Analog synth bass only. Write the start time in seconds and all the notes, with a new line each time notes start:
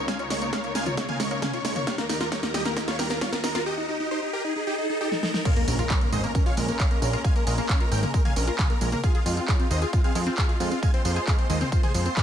5.68 A#1
6.12 G#1
6.57 A#1
7.02 A#1
7.47 A#1
7.91 G#1
8.36 A#1
8.81 A#1
9.26 F2
9.71 D#2
10.15 F2
10.60 F2
11.05 F2
11.50 D#2
11.95 F2